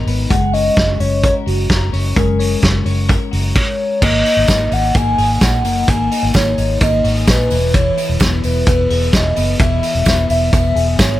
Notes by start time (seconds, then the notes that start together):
Already playing: G#3 D#4 A#4
0.07 G#1 B3, open hi-hat
0.30 F#1 G#3 F#5, kick, closed hi-hat
0.53 C#4 D#5, open hi-hat
0.76 F#1 F#4, kick, snare, closed hi-hat
1.00 F#1 C#4 C#5, open hi-hat
1.23 A#4 C#5, kick, closed hi-hat
1.46 F#1 F#4, open hi-hat
1.70 F#1 A#4, kick, snare, closed hi-hat
1.93 F#1 C#4, open hi-hat
2.16 F#1 G#3 A#4, kick, closed hi-hat
2.39 C#4, open hi-hat
2.62 F#1 F#4, kick, snare, closed hi-hat
2.86 F#1 C#4, open hi-hat
3.09 A#4, kick, closed hi-hat
3.31 F#1 F#4, open hi-hat
3.56 C#5, kick, crash
4.02 G#1 A#3 D#5, kick, crash, tambourine
4.25 D#4, open hi-hat, tambourine
4.37 G#1
4.47 G#1 A#3, kick, snare, hi-hat pedal, ride, tambourine
4.71 G#1 D#4 F#5, open hi-hat, tambourine
4.95 G#1 A#3 G#5, kick, hi-hat pedal, ride, tambourine
5.18 G#1 G#4, open hi-hat, tambourine
5.41 A#1 D#4 F#5, kick, snare, hi-hat pedal, ride, tambourine
5.65 F#1 A#3, open hi-hat, tambourine
5.88 G#1 A#3 G#5, kick, hi-hat pedal, ride, tambourine
6.12 D#4, open hi-hat, tambourine
6.23 G#1
6.34 G#1 A#3 C#5, kick, snare, hi-hat pedal, ride, tambourine
6.58 G#1 D#4, open hi-hat, tambourine
6.81 G#1 A#3 D#5, kick, hi-hat pedal, ride, tambourine
7.04 G#1 F#4, open hi-hat, tambourine
7.16 G#4
7.27 A#1 D#4 B4, kick, snare, hi-hat pedal, ride, tambourine
7.50 E1 E3, open hi-hat, tambourine
7.74 E3 C#5, kick, hi-hat pedal, ride, tambourine
7.97 E4, open hi-hat, tambourine
8.09 E1
8.20 E1 B3, kick, snare, hi-hat pedal, ride, tambourine
8.43 E1 E4 B4, open hi-hat, tambourine
8.66 E1 B3, kick, hi-hat pedal, ride, tambourine
8.90 E1 G#4, open hi-hat
9.13 E1 E4 D#5, kick, snare, hi-hat pedal, ride, tambourine
9.36 F#1 B3, open hi-hat, tambourine
9.59 E1 E3 E5, kick, hi-hat pedal, ride, tambourine
9.83 E4, open hi-hat, tambourine
9.95 E1
10.06 E1 B3, kick, snare, hi-hat pedal, ride, tambourine
10.30 E1 E4 E5, open hi-hat, tambourine
10.52 E1 B3 E5, kick, hi-hat pedal, ride, tambourine
10.76 E1 G#4, open hi-hat
10.99 G#1 E4 C#5, kick, snare, hi-hat pedal, ride, tambourine